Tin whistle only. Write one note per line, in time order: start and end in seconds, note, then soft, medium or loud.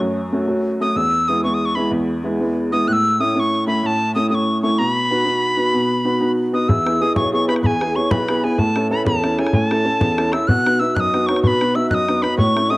0.81 0.98 D#6 loud
0.96 1.30 E6 loud
1.28 1.43 D#6 medium
1.44 1.55 C#6 medium
1.54 1.67 D#6 medium
1.66 1.77 C#6 medium
1.75 1.91 B5 medium
2.72 2.89 D#6 loud
2.88 2.94 F#6 loud
2.93 3.22 E6 loud
3.21 3.35 D#6 loud
3.35 3.41 D#6 medium
3.40 3.67 C#6 medium
3.68 3.82 B5 medium
3.82 4.14 A5 loud
3.82 3.87 B5 loud
4.15 4.29 D#6 medium
4.30 4.36 D#6 medium
4.35 4.60 C#6 medium
4.62 4.80 C#6 loud
4.79 4.90 A#5 loud
4.90 6.32 B5 loud
6.54 6.70 D#6 medium
6.68 7.03 E6 loud
7.02 7.16 D#6 medium
7.16 7.32 C#6 medium
7.33 7.47 C#6 medium
7.48 7.54 B5 medium
7.63 7.97 G#5 medium
7.63 7.67 B5 medium
7.96 8.12 C#6 medium
8.11 8.45 B5 medium
8.44 8.60 G#5 medium
8.59 8.90 A5 loud
8.91 9.05 B5 medium
9.06 9.40 A5 medium
9.39 9.54 G#5 medium
9.54 9.67 G#5 medium
9.67 10.34 A5 medium
10.32 10.49 E6 medium
10.47 10.81 F#6 loud
10.79 10.97 E6 medium
10.95 11.01 F#6 medium
11.00 11.28 D#6 medium
11.27 11.42 C#6 medium
11.43 11.48 C#6 medium
11.47 11.77 B5 loud
11.75 11.89 E6 medium
11.90 11.95 F#6 medium
11.94 12.24 D#6 loud
12.22 12.37 B5 medium
12.38 12.72 C#6 loud
12.70 12.77 D#6 medium